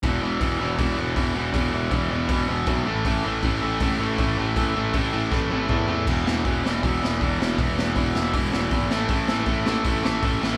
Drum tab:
CC |--------|--------|--------|--------|
HH |o-o-o-o-|o-o-o-o-|o-o-o-o-|o-o-----|
SD |--------|--------|--------|----o---|
T1 |--------|--------|--------|-----o--|
T2 |--------|--------|--------|------o-|
FT |--------|--------|--------|-------o|
BD |o-o-o-o-|o-o-o-o-|o-o-o-o-|o-o-o-o-|

CC |x-------|--------|--------|
HH |o-o-o-o-|o-o-o-o-|o-o-o-o-|
SD |-o-o-o-o|-o-o-o-o|-o-o-o-o|
T1 |--------|--------|--------|
T2 |--------|--------|--------|
FT |--------|--------|--------|
BD |o-o-o-o-|o-o-o-o-|o-o-o-o-|